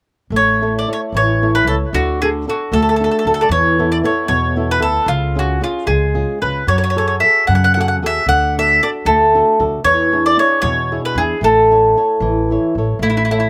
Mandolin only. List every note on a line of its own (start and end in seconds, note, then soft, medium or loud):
0.36 0.73 C#5 medium
0.79 0.88 D5 medium
0.93 0.99 C#5 medium
1.17 1.53 C#5 medium
1.55 1.67 B4 medium
1.67 1.74 A4 medium
1.95 2.20 F#4 medium
2.22 2.28 G#4 medium
2.50 2.71 F#4 medium
2.73 2.80 A4 medium
2.82 2.88 A4 soft
2.89 2.95 A4 medium
2.96 3.03 A4 medium
3.04 3.10 A4 medium
3.11 3.17 A4 soft
3.19 3.25 A4 medium
3.27 3.32 A4 soft
3.34 3.39 A4 medium
3.41 3.47 A4 medium
3.41 3.49 D5 soft
3.52 3.89 C#5 medium
3.92 3.97 D5 medium
4.05 4.27 C#5 medium
4.28 4.71 C#5 medium
4.71 4.82 B4 medium
4.82 5.06 A4 medium
5.08 5.37 F4 medium
5.39 5.61 F#4 medium
5.64 5.86 F4 medium
5.87 6.38 G#4 medium
6.42 6.66 B4 medium
6.68 6.75 C#5 medium
6.78 6.82 C#5 medium
6.84 6.89 C#5 medium
6.90 6.97 C#5 medium
6.98 7.05 C#5 medium
7.08 7.14 C#5 medium
7.20 7.47 E5 medium
7.47 7.54 F#5 medium
7.55 7.63 F#5 medium
7.64 7.72 F#5 medium
7.74 7.79 F#5 medium
7.81 7.87 F#5 medium
7.88 7.95 F#5 medium
8.06 8.28 E5 medium
8.29 8.55 F#5 loud
8.59 8.81 E5 medium
8.83 8.89 D5 medium
9.06 9.61 A4 medium
9.85 10.25 C#5 loud
10.26 10.38 D5 medium
10.39 10.61 C#5 medium
10.62 11.00 C#5 medium
11.05 11.16 B4 medium
11.18 11.40 G#4 medium
11.44 12.48 A4 medium
13.03 13.08 E4 medium
13.10 13.16 E4 soft
13.17 13.24 E4 medium
13.25 13.30 E4 medium
13.31 13.39 E4 medium
13.40 13.47 E4 soft